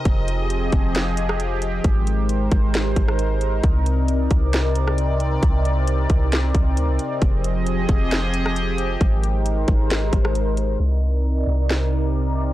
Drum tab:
HH |x-x-x-x-x-x-x-x-|x-x-x-x-x-x-x-x-|x-x-x-x-x-x-x-x-|x-x-x-x-x-x-x-x-|
SD |--------o--r----|--------o--r----|--------o--r----|--------o-------|
BD |o-----o---------|o-----o---o-----|o-----o---------|o-----o---o-----|

HH |x-x-x-x-x-x-x-x-|x-x-x-x-x-x-x-x-|----------------|
SD |--------o--r----|--------o--r----|--------o-------|
BD |o-----o---------|o-----o---o-----|----------------|